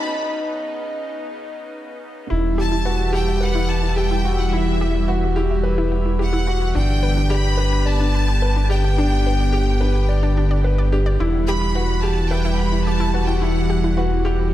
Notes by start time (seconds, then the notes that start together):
Already playing: C#3 B3 D#4 F#4 B4
2.30 E1 E3 G3 E4 E5
2.58 G4 A5
2.72 E4
2.85 F#4 B4
3.13 E4 G4 G5
3.28 E5
3.41 B4 F#5
3.55 E4
3.69 F#5 A5
3.83 E4
3.96 G4 G5
4.11 E4
4.25 F#4 B4
4.39 E4 F#5
4.52 E4 E5
4.81 G4
4.95 E4
5.08 F#4 B4
5.36 E4 G4
5.51 E5
5.63 B4
5.78 E4
5.92 F#5
6.06 E4
6.19 G4 F#5
6.33 E4
6.47 F#4 B4
6.61 E4
6.75 G1 D3 B3 D4 G4 G5
7.03 B4
7.17 D4
7.30 G4 D5 B5
7.57 D4 B4
7.73 G5
7.86 D5 A5
8.00 D4
8.15 B5
8.28 D4
8.42 B4
8.56 D4
8.70 G4 D5 G5
8.84 D4
8.97 D4
9.27 B4
9.40 D4
9.53 G4 D5
9.80 D4 B4
9.95 G5
10.09 D5
10.23 D4
10.37 D4
10.51 D5
10.64 B4
10.78 D5
10.92 D4 G4
11.06 D5
11.19 E1 E3 G3 E4 F#5
11.48 G4 B5
11.61 E4
11.75 F#4 B4
12.02 E4 G4 A5
12.30 B4 E5 G5
12.45 E4
12.57 F#5 B5
12.72 E4
12.85 G4 A5
13.00 E4
13.14 F#4 B4
13.28 E4 G5
13.41 E4 F#5
13.70 G4
13.84 E4
13.97 F#4 B4
14.25 E4 G4